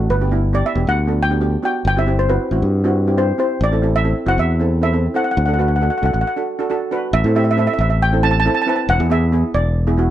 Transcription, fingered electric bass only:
0.10 0.61 G1 medium
0.75 0.85 E1 medium
0.87 1.56 D2 medium
1.85 2.37 G1 loud
2.51 2.60 A1 medium
2.62 3.31 G2 medium
3.61 4.12 A1 medium
4.26 4.36 F#1 medium
4.38 5.07 E2 medium
5.37 5.88 D2 medium
6.03 6.12 C2 medium
6.14 6.23 A1 medium
7.13 7.22 A1 loud
7.24 7.67 A2 medium
7.79 8.47 A1 medium
8.89 8.98 E1 loud
9.00 9.42 E2 medium
9.54 10.11 E1 medium

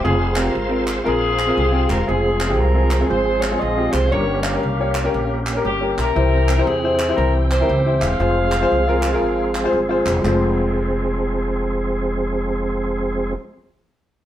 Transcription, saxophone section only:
0.05 0.90 C4 medium
0.05 0.37 F4 medium
0.05 0.35 G#4 loud
0.38 0.90 F4 medium
0.38 0.88 A#4 medium
1.07 2.05 C4 medium
1.07 2.05 F4 medium
1.07 1.86 G#4 loud
1.58 1.88 G4 medium
1.90 2.07 A#4 medium
2.08 3.06 C4 medium
2.08 2.59 F4 medium
2.08 2.59 G#4 medium
2.57 3.09 F4 medium
2.57 3.09 A#4 medium
3.08 4.08 F4 medium
3.08 4.08 G#4 medium
3.08 3.41 C5 loud
3.41 3.60 C#5 loud
3.59 3.92 D#5 loud
3.92 4.11 C5 loud
4.11 5.10 G4 medium
4.11 4.44 A#4 medium
4.11 4.44 C#5 loud
4.44 5.43 A#4 medium
4.44 5.43 C#5 medium
4.44 5.46 F5 medium
5.65 5.95 G4 medium
5.98 6.66 E4 medium
5.98 6.96 G4 medium
5.98 6.67 A#4 loud
6.67 7.65 C4 medium
6.67 7.17 E4 medium
6.67 7.18 G#4 loud
7.17 7.50 E4 medium
7.17 7.50 G4 medium
7.17 7.32 A#4 loud
7.51 8.16 E4 medium
7.51 8.17 G4 medium
7.51 7.99 C5 loud
8.01 9.69 G#4 medium
8.01 9.69 C5 medium
8.01 9.73 F5 loud

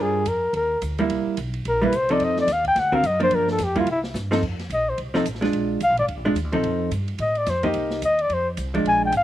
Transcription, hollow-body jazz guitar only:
0.00 0.23 G3 medium
0.00 0.24 D4 medium
0.00 0.24 F4 medium
0.00 0.24 A#4 medium
0.99 1.35 G3 medium
0.99 1.36 A#3 medium
0.99 1.36 E4 medium
1.82 1.91 G3 medium
1.82 1.92 A#3 medium
1.82 1.92 E4 medium
2.10 2.46 F3 medium
2.10 2.46 C4 medium
2.10 2.47 D#4 medium
2.10 2.47 A4 medium
2.92 3.02 D3 medium
2.92 3.02 C4 medium
2.92 3.02 F#4 medium
2.92 3.03 A#4 medium
3.20 3.56 F3 medium
3.20 3.57 A#3 medium
3.20 3.57 D4 medium
3.76 3.86 G3 medium
3.76 3.86 A#3 medium
3.76 3.86 E4 medium
4.31 4.41 F3 medium
4.31 4.41 C4 medium
4.31 4.41 D#4 medium
4.31 4.41 A4 medium
5.14 5.24 F3 medium
5.14 5.24 C4 medium
5.14 5.25 D#4 medium
5.14 5.25 A4 medium
5.41 5.78 G#3 medium
5.41 5.79 D4 medium
5.41 5.79 F4 medium
6.25 6.35 G#3 medium
6.25 6.35 D4 medium
6.25 6.36 F4 medium
6.52 6.89 F3 medium
6.52 6.90 C4 medium
6.52 6.90 D#4 medium
6.52 6.90 A4 medium
7.63 8.00 A#3 medium
7.63 8.00 D#4 medium
7.63 8.01 G4 medium
8.74 9.11 F3 medium
8.74 9.11 G#3 medium
8.74 9.11 D4 medium

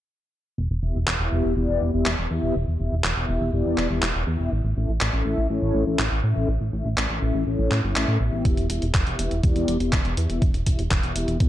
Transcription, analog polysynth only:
0.83 0.98 B3 medium
0.83 0.98 E4 medium
0.83 0.98 G4 medium
0.83 0.98 E5 medium
1.20 1.54 B3 medium
1.20 1.54 E4 medium
1.20 1.54 G4 medium
1.20 1.54 E5 medium
1.56 1.90 B3 medium
1.56 1.90 E4 medium
1.56 1.90 G4 medium
1.56 1.90 D5 loud
1.93 2.09 B3 medium
1.93 2.09 E4 medium
1.93 2.09 G4 medium
1.93 2.09 E5 medium
2.30 2.55 B3 medium
2.30 2.55 E4 medium
2.30 2.55 G4 medium
2.30 2.55 E5 medium
2.80 2.95 B3 medium
2.80 2.95 E4 medium
2.80 2.95 G4 medium
2.80 2.95 E5 medium
3.17 3.50 B3 medium
3.17 3.50 E4 medium
3.17 3.50 G4 medium
3.17 3.50 E5 medium
3.53 3.87 B3 medium
3.53 3.87 E4 medium
3.53 3.87 G4 medium
3.53 3.87 D5 loud
3.90 4.05 B3 medium
3.90 4.05 E4 medium
3.90 4.05 G4 medium
3.90 4.05 E5 loud
4.27 4.50 B3 medium
4.27 4.50 E4 medium
4.27 4.50 G4 medium
4.27 4.50 E5 medium
4.76 4.91 C#4 medium
4.76 4.92 E4 medium
4.76 4.91 A4 medium
4.76 4.91 E5 medium
5.13 5.47 C#4 medium
5.13 5.47 E4 medium
5.13 5.47 A4 medium
5.13 5.47 E5 medium
5.50 5.84 C#4 medium
5.50 5.84 E4 medium
5.50 5.84 A4 medium
5.50 5.84 C#5 loud
5.87 6.02 C#4 medium
5.87 6.02 E4 medium
5.87 6.02 A4 medium
5.87 6.02 E5 medium
6.24 6.48 C#4 medium
6.24 6.48 E4 medium
6.24 6.48 A4 medium
6.24 6.48 E5 medium
6.73 6.88 C#4 medium
6.73 6.88 E4 medium
6.73 6.88 A4 medium
6.73 6.88 E5 medium
7.10 7.44 C#4 medium
7.10 7.44 E4 medium
7.10 7.44 A4 medium
7.10 7.44 E5 medium
7.47 7.81 C#4 medium
7.47 7.81 E4 medium
7.47 7.81 A4 medium
7.47 7.81 C#5 loud
7.84 8.18 C#4 medium
7.84 8.18 E4 medium
7.84 8.18 A4 medium
7.84 8.18 E5 loud
8.20 8.67 B3 medium
8.20 8.67 E4 medium
8.20 8.67 G4 medium
8.20 8.67 E5 medium
8.70 8.85 B3 medium
8.70 8.85 E4 medium
8.70 8.85 G4 medium
8.70 8.85 E5 medium
9.07 9.41 B3 medium
9.07 9.41 E4 medium
9.07 9.41 G4 medium
9.07 9.41 E5 medium
9.44 9.77 B3 medium
9.44 9.77 E4 medium
9.44 9.77 G4 medium
9.44 9.77 D5 loud
9.80 9.96 B3 medium
9.80 9.96 E4 medium
9.80 9.96 G4 medium
9.80 9.96 E5 loud
10.17 10.42 B3 medium
10.17 10.42 E4 medium
10.17 10.42 G4 medium
10.17 10.42 E5 medium
10.66 10.82 B3 medium
10.66 10.82 E4 medium
10.66 10.82 G4 medium
10.66 10.82 E5 medium
11.03 11.37 B3 medium
11.03 11.37 E4 medium
11.03 11.37 G4 medium
11.03 11.37 E5 medium
11.40 11.49 B3 medium
11.40 11.49 E4 medium
11.40 11.49 G4 medium
11.40 11.49 D5 loud

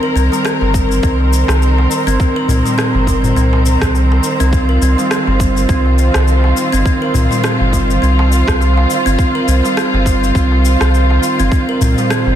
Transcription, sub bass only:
0.16 0.29 C2 loud
0.61 1.00 G1 medium
1.03 1.44 C2 medium
1.49 1.87 C2 loud
2.07 2.17 G1 medium
2.49 2.62 C2 medium
2.94 3.33 G1 medium
3.36 3.77 C2 medium
3.82 4.20 C2 loud
4.40 4.78 C2 medium
4.82 4.95 C2 loud
5.27 5.66 G1 medium
5.69 6.10 C2 medium
6.15 6.53 C2 loud
6.73 6.84 G1 medium
7.15 7.28 C2 loud
7.60 7.99 G1 medium
8.03 8.43 C2 medium
8.48 8.86 C2 loud
9.06 9.17 G1 medium
9.48 9.61 C2 loud
9.94 10.32 G1 medium
10.35 10.76 C2 medium
10.81 11.19 C2 loud
11.39 11.50 G1 medium
11.81 11.95 C2 loud
12.27 12.35 G1 medium

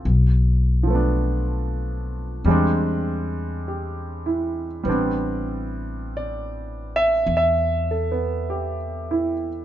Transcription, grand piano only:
0.83 2.44 F3 soft
0.87 2.46 A3 soft
0.87 2.47 B3 soft
0.95 2.49 D4 medium
2.45 4.82 G3 medium
2.45 4.88 G#3 soft
2.45 4.86 C4 soft
2.50 4.88 D4 medium
3.68 4.65 G4 soft
4.26 5.13 E4 soft
4.83 9.65 G3 soft
4.83 8.10 B3 soft
4.88 9.65 C4 soft
4.88 9.65 D4 medium
6.17 6.92 D5 medium
6.96 7.31 E5 medium
7.37 9.32 E5 medium
7.91 8.77 A4 soft
8.11 9.65 B3 soft
8.50 9.47 G4 soft
9.11 9.65 E4 soft

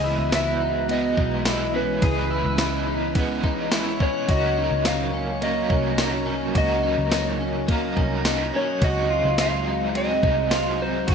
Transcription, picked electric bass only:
0.00 0.16 C#2 loud
0.18 1.14 C#2 medium
1.18 1.98 B1 loud
2.02 2.43 C#2 loud
2.45 3.44 C#2 loud
3.44 3.98 B1 loud
4.29 4.69 C#2 loud
4.71 5.66 C#2 medium
5.70 6.51 C2 medium
6.55 6.96 C#2 loud
6.98 7.93 C#2 medium
7.97 8.51 C2 loud
8.82 9.22 C#2 loud
9.24 10.19 C#2 medium
10.23 11.04 C2 medium
11.08 11.15 C#2 loud

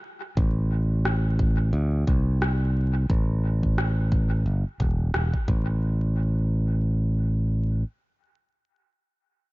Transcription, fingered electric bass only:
0.37 1.70 A1 medium
1.73 2.03 D2 medium
2.07 3.07 C2 medium
3.10 4.43 A1 medium
4.46 4.63 G1 medium
4.80 5.10 E1 medium
5.14 5.31 E1 medium
5.48 7.83 A1 medium

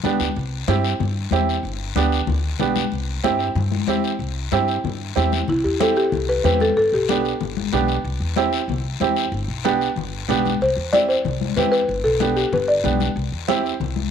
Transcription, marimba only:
5.49 5.56 E4 medium
5.64 5.79 G4 medium
5.81 5.97 A4 medium
5.97 6.30 G4 medium
6.29 6.44 B4 medium
6.45 6.52 B4 loud
6.61 6.76 A4 medium
6.77 6.84 A4 medium
6.94 7.53 G4 medium
10.62 10.94 C5 medium
10.93 11.00 D5 loud
11.09 11.53 C5 loud
11.57 11.64 B4 medium
11.72 12.05 B4 loud
12.04 12.34 A4 medium
12.36 12.53 G4 medium
12.54 12.61 B4 medium
12.68 12.98 D5 medium

